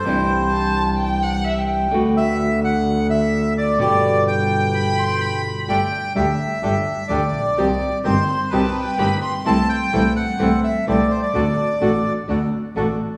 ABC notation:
X:1
M:4/4
L:1/16
Q:1/4=127
K:G
V:1 name="Violin"
z4 a4 g2 f2 e g3- | g z12 z3 | z8 b2 c'2 b4 | z16 |
z4 c'2 c'2 a2 g2 b2 c'2- | c' z12 z3 | z16 |]
V:2 name="Bandoneon"
c6- c z8 z | z2 e4 f4 e4 d2 | d4 g8- g2 z2 | g4 e8 d4- |
d4 c4 B6 z2 | a2 g4 f4 e2 d2 c d- | d6- d z8 z |]
V:3 name="Bandoneon"
z16 | z16 | z16 | [A,DG]2 z2 [A,DG]2 z2 [A,DG]2 z2 [A,DG]2 z2 |
[C_EG]2 z2 [CEG]2 z2 [CEG]2 z2 [CEG]2 z2 | [CEA]2 z2 [CEA]2 z2 [CEA]2 z2 [CEA]2 z2 | [DFA]2 z2 [DFA]2 z2 [DFA]2 z2 [DFA]2 z2 |]
V:4 name="Nylon-string guitar"
[C,E,G,DE]16 | [D,A,B,F]16 | [B,,D,G,B,G]16 | [D,G,DG]2 z2 [D,G,DG]2 z2 [D,G,DG]2 z2 [D,G,DG]2 z2 |
[C,_E,G,CG]2 z2 [C,E,G,CG]2 z2 [C,E,G,CG]2 z2 [C,E,G,CG]2 z2 | [C,E,A,CE]2 z2 [C,E,A,CE]2 z2 [C,E,A,CE]2 z2 [C,E,A,CE]2 z2 | [D,A,DF]2 z2 [D,A,DF]2 z2 [D,A,DF]2 z2 [D,A,DF]2 z2 |]
V:5 name="Double bass" clef=bass
C,,16 | D,,16 | G,,,16 | G,,,2 z2 D,,2 z2 G,,,2 z2 D,,2 _B,,,2 |
C,,2 z2 G,,,2 z2 C,,2 z2 G,,,2 z2 | C,,2 z2 C,,2 z2 C,,2 z2 C,,2 z2 | D,,2 z2 A,,,2 z2 D,,2 z2 A,,,2 z2 |]